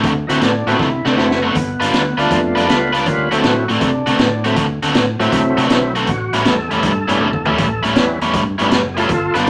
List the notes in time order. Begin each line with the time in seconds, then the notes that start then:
Already playing: D3 A3 C4 F#4
0.03 D2, kick, snare, closed hi-hat
0.27 D2 D3 A3 C4 D#4 E4 F#4, snare, closed hi-hat
0.41 A2 D4, snare, closed hi-hat
0.66 A2 D3 A3 B3 C4 E4 F#4, snare, closed hi-hat
0.77 C3 D#4, kick, snare
0.82 E4
1.05 C3 D3 A3 C4 D4 F#4, snare
1.16 F#1 A3 B3 C4 E4 F#4, snare
1.31 snare
1.43 D3 A3 B3 C4 F#4
1.55 G1, kick, snare, closed hi-hat
1.80 G1 G3 D4 F4 B4, snare, closed hi-hat
1.91 D2, snare, closed hi-hat
2.17 D2 G3 A3 B3 D4 F4 B4, snare, closed hi-hat
2.31 F2, kick, snare, closed hi-hat
2.55 F2 G3 D4 F4 B4 D5, snare, closed hi-hat
2.67 C#2 A3 B3 D4 F4 B4, snare, closed hi-hat
2.93 G3 D4 F4 B4 D5, snare, closed hi-hat
3.06 D2 G3 A#3 C#4 F4 B4, kick, snare, closed hi-hat
3.31 D2 D3 F#3 A3 C4 E4 F#4 A4, snare, closed hi-hat
3.43 A2 F#4, snare, closed hi-hat
3.69 A2 D3 A3 C4 F#4, snare, closed hi-hat
3.73 D4
3.81 C3, kick, snare, closed hi-hat
4.06 C3 D3 A3 C4 F#4, snare, closed hi-hat
4.18 A2, snare, closed hi-hat
4.44 D3 F#3 A3 C4 E4 F#4, snare, closed hi-hat
4.56 D2, kick, snare, closed hi-hat
4.82 D2 D3 A3 C4 F#4, snare, closed hi-hat
4.94 A2, snare, closed hi-hat
5.19 A2 D3 F#3 A3 C4 E4 F#4, snare, closed hi-hat
5.32 C3, kick, snare, closed hi-hat
5.57 C3 D3 A3 C4 D4 F#4, snare, closed hi-hat
5.69 B1 F#3 A3 C4 E4, snare, closed hi-hat
5.95 D3 A3 C4 F#4, snare, closed hi-hat
6.07 A1 F#4, kick, snare, closed hi-hat
6.33 A1 A2 G3 C#4 E4, snare, closed hi-hat
6.45 E2 A4, snare, closed hi-hat
6.68 E2 A2 G3 C#4 E4 G#4, snare, closed hi-hat
6.74 A4
6.83 G2, kick, snare, closed hi-hat
7.08 G2 A2 G3 B3 C#4 E4, snare, closed hi-hat
7.20 E2, high tom
7.33 kick
7.45 A2 G3 C#4 E4, floor tom
7.58 A1, kick, snare, closed hi-hat
7.83 A1 A2 G3 C#4 E4, snare, closed hi-hat
7.95 E2 G3 B3 C#4 E4, snare, closed hi-hat
8.21 E2 A2 G3 C#4 E4, snare, closed hi-hat
8.34 G2, kick, snare, closed hi-hat
8.58 G2 A2 G3 B3 C#4 E4, snare, closed hi-hat
8.71 F#1, snare, closed hi-hat
8.94 G3 C#4 E4 F4 G#4, snare, closed hi-hat
8.98 A2 A4
9.09 G1 F4 A4, kick, snare, closed hi-hat
9.34 G1 G3 B3 D4 F4 G4 B4, snare, closed hi-hat
9.47 D2, closed hi-hat